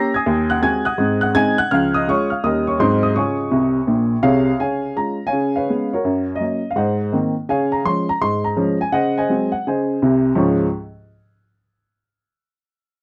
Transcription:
Already playing: A#3 C#4 G4 A#5 A#6
0.14 G#5 D#6 G#6
0.26 D#2
0.50 F#5 F#6
0.62 G#3 C4 F#4 G#5 G#6
0.85 F#5 D#6 F#6
0.98 G#2 C4
1.21 F#5 F#6
1.35 G#3 C4 D#4 G#5 G#6
1.58 F#5 F#6
1.71 C#2 F3 F5 F6
1.94 D#5 D#6
2.08 G#3 C#4 F4 C#5 C#6
2.30 F5 F6
2.44 D#2 G3 C#4 A#4 D#5 D#6
2.67 C#5 C#6
2.80 G#2 F#3 C4 D#4 G#4 C5 C6
3.03 D#5 D#6
3.16 C#3 F4 C#5 G#5 C#6
3.51 C2 C3
3.87 A#1 A#2
4.23 C2 C3 G#4 C#5 F5
4.59 C#3 C#5 F5 G#5
4.96 G#3 C#4 F4 A#5
5.27 C#5 F5 G#5
5.33 C#3
5.56 B4 C#5 F5
5.70 G#3 B3 C#4
5.93 F#4 A#4 C#5
6.05 F#2
6.36 D#5
6.40 F#3 A#3 C#4
6.71 F5
6.76 G#2 C5 D#5 F#5
7.12 D#3 A#3 C4
7.49 C#3 C#5 F5 G#5
7.72 A#5
7.85 F3 G#3 C#4 C6
8.09 A#5
8.21 G#2 C6
8.44 A#5
8.57 F3 G#3 C#4
8.81 G#5
8.92 C#3 C5 D#5 F#5
9.18 C5 D#5 G#5
9.29 F#3 G#3 C4
9.52 F#5
9.67 C#3 C5 D#5 G#5
10.02 C2 C3
10.35 C#2 G#2 F3 G#3 C#4 F4 C#6

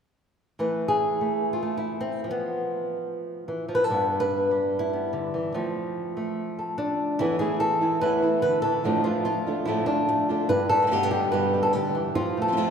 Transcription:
0.59 E3 A3 B4
0.88 G#4
1.21 A3
1.53 F4
1.63 A3
1.77 E4
2.01 C4
2.24 F3
2.31 B3
3.48 E3
3.68 F3
3.75 B4
3.84 A4
3.90 G2 G3 B3 D4
4.20 B4
4.51 G3
4.79 E4
4.93 B3
5.13 D3
5.34 E3
5.54 F3 A3 C4
6.17 A3
6.59 A4
6.78 D4
7.19 E2 A2 E3 A3 B3 E4
7.39 E3 A3 B3 E4 G#4
7.60 A4, muted nylon-string guitar stroke
7.81 E3 A3 B3 E4
8.01 E2 A2 E3 A3 B3 E4 B4
8.22 E3 A3 B3 E4
8.42 D3 B4, muted nylon-string guitar stroke
8.62 E3 A3 B3 E4 A4
8.84 F2 A2 D3 F3 A3 D4 F4
9.04 D3 A3 D4 F4
9.25 F4, muted nylon-string guitar stroke
9.47 D3 A3 D4 F4
9.65 F2 A2 D3 A3 D4 E4 F4
9.86 D3 A3 D4 F4
10.09 A3, muted nylon-string guitar stroke
10.29 D3 A3 D4 F4
10.49 G2 B4, muted nylon-string guitar stroke
10.69 G3 A4
10.82 B2 D3 G3 B3 G4
10.87 B2 D3 G3 B3 G4
10.91 G2 B2 D3 G3 A3 B3 G4
11.03 B3
11.11 D3 G3 B3 G4
11.32 G2 B2 D3 G3 B3 G4 B4
11.54 D3 G3 B3 G4
11.63 A4
11.73 D3 G4, muted nylon-string guitar stroke
11.95 E3
12.15 F3 F4, muted nylon-string guitar stroke
12.37 A3
12.42 A4
12.48 C3 F3 A3 C4 F4
12.52 C3 F3 A3 C4 F4
12.57 F2 C3 F3 A3 C4 F4

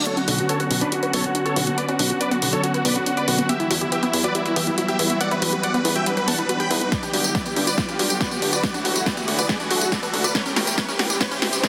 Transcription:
0.06 D3 F#3 B3 C#4 F#4 A4 C#5, closed hi-hat, riser
0.17 C#4 F#4, closed hi-hat
0.28 B1 D4 F#4, open hi-hat
0.38 F#4, closed hi-hat
0.49 A4 B4 C#5, closed hi-hat
0.60 B3 F#4, closed hi-hat
0.71 B1 C#4 F#4, open hi-hat
0.81 D4 B4, closed hi-hat
0.92 F#4, closed hi-hat
1.03 F#4 B4, closed hi-hat
1.13 B1 B3 A4 C#5, open hi-hat
1.24 C#4 F#4, closed hi-hat
1.35 D4 F#4, closed hi-hat
1.45 F#4 A4 C#5, closed hi-hat
1.56 B1 F#4 B4, open hi-hat
1.67 B3 F#4, closed hi-hat
1.77 B3 B4 D5, closed hi-hat
1.88 C#4 F#4, closed hi-hat
1.99 B1 D4 F#4, open hi-hat
2.10 F#4, closed hi-hat
2.21 B4 D5, closed hi-hat
2.31 B3 F#4, closed hi-hat
2.42 B1 C#4 F#4, open hi-hat
2.53 D4 A4 C#5, closed hi-hat
2.63 F#4, closed hi-hat
2.74 F#4 B4, closed hi-hat
2.85 B1 B3 B4 D5, open hi-hat
2.96 C#4 F#4, closed hi-hat
3.06 D4 F#4, closed hi-hat
3.17 F#4 B4 D5, closed hi-hat
3.28 B1 F#4 B4, open hi-hat
3.38 B3 F#4, closed hi-hat
3.49 E3 G3 B3 G4 E5, closed hi-hat
3.60 E4, closed hi-hat
3.70 E2 E4 F#4, open hi-hat
3.81 E4 G4, closed hi-hat
3.92 G4 B4 E5, closed hi-hat
4.03 B3 E4, closed hi-hat
4.13 E2 E4, open hi-hat
4.24 F#4 B4 D5, closed hi-hat
4.35 E4 G4, closed hi-hat
4.45 E4 B4, closed hi-hat
4.56 E2 B3 G4 E5, open hi-hat
4.67 E4, closed hi-hat
4.78 E4 F#4, closed hi-hat
4.88 G4 E5, closed hi-hat
4.99 E2 E4 B4, open hi-hat
5.10 B3 E4, closed hi-hat
5.21 B3 D5 F#5, closed hi-hat
5.31 E4 B4, closed hi-hat
5.42 E2 F#4 B4, open hi-hat
5.53 G4 B4, closed hi-hat
5.63 B4 D5 F#5, closed hi-hat
5.74 B3 B4, closed hi-hat
5.85 E2 E4 B4, open hi-hat
5.96 F#4 E5 G5, closed hi-hat
6.06 G4 B4, closed hi-hat
6.17 B4, closed hi-hat
6.28 E2 B3 F#5 A5, open hi-hat
6.38 E4 B4, closed hi-hat
6.49 F#4 B4, closed hi-hat
6.60 G4 G5 B5, closed hi-hat
6.71 E2 B4, open hi-hat
6.81 B3 B4, closed hi-hat
6.92 D3 F#3 B3 B4 D5, kick, snare, closed hi-hat, tambourine
7.03 D4 G4, closed hi-hat, tambourine
7.13 G2 F#4 G4, open hi-hat
7.24 G4, closed hi-hat, tambourine
7.35 F#4 B4 D5, kick, snare, closed hi-hat
7.45 B3 G4, closed hi-hat, tambourine
7.56 G2 D4 G4, open hi-hat
7.67 F#4 B4 D5, closed hi-hat, tambourine
7.78 B3 B4 D5, kick, snare, closed hi-hat, tambourine
7.88 D4 G4, closed hi-hat, tambourine
7.99 G2 F#4 G4, open hi-hat
8.10 G4, closed hi-hat, tambourine
8.20 F#4 B4 D5, kick, snare, closed hi-hat, tambourine
8.31 B3 G4, closed hi-hat, tambourine
8.42 G2 D4 G4, open hi-hat
8.53 F#4 B4 D5, closed hi-hat, tambourine
8.63 E3 A3 B3 E4 B4 D5, kick, snare, closed hi-hat, tambourine
8.74 D4 F#4, closed hi-hat, tambourine
8.85 D2 F#4, open hi-hat
8.96 F#4, closed hi-hat, tambourine
9.06 F#4 B4 D5, kick, snare, closed hi-hat, tambourine
9.17 B3 F#4, closed hi-hat, tambourine
9.28 D2 D4 F#4, open hi-hat
9.38 F#4 B4 D5, closed hi-hat, tambourine
9.49 B3 B4 D5, kick, snare, closed hi-hat, tambourine
9.60 D4 F#4, closed hi-hat, tambourine
9.71 D2 F#4, open hi-hat
9.81 F#4, closed hi-hat, tambourine
9.92 F#4 B4 D5, kick, snare, closed hi-hat, tambourine
10.03 B3 F#4, closed hi-hat, tambourine
10.13 D2 D4 F#4, open hi-hat
10.24 F#4 B4 D5, closed hi-hat, tambourine
10.35 C#3 E3 G3 B3 E4 B4 C#5, kick, snare, closed hi-hat, tambourine
10.45 C#4 G4, closed hi-hat, tambourine
10.56 A1 F#4 G4, snare, open hi-hat
10.67 G4, closed hi-hat, tambourine
10.78 B3 B4 C#5, kick, snare, closed hi-hat, tambourine
10.88 C#4 G4, closed hi-hat, tambourine
10.99 A1 F#4 G4, snare, open hi-hat
11.10 G4, closed hi-hat, tambourine
11.21 B3 B4 C#5, kick, snare, closed hi-hat, tambourine
11.31 C#4 G4, closed hi-hat, tambourine
11.42 A1 F#4 G4, snare, open hi-hat
11.53 G4, closed hi-hat, tambourine
11.63 B3 B4 C#5, kick, snare, closed hi-hat, tambourine

